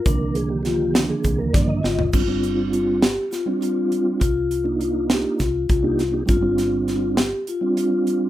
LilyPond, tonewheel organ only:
<<
  \new Staff \with { instrumentName = "Tonewheel organ" } { \time 7/8 \key c \minor \tempo 4 = 101 bes'8 aes'16 g'16 g'8. aes'8 bes'16 d''16 ees''8. | <g c' d' f'>16 <g c' d' f'>4~ <g c' d' f'>16 r8. <g c' d' f'>4~ <g c' d' f'>16 | r8. <bes d' ees' f'>4~ <bes d' ees' f'>16 r8. <bes d' ees' g'>16 r16 <bes d' ees' g'>16 | <g c' d' f'>16 <g c' d' f'>4~ <g c' d' f'>16 r8. <g c' d' f'>4~ <g c' d' f'>16 | }
  \new Staff \with { instrumentName = "Tonewheel organ" } { \clef bass \time 7/8 \key c \minor <d ees f bes>2~ <d ees f bes>8 <ees f bes d'>8 r8 | r2. r8 | r2. r8 | r2. r8 | }
>>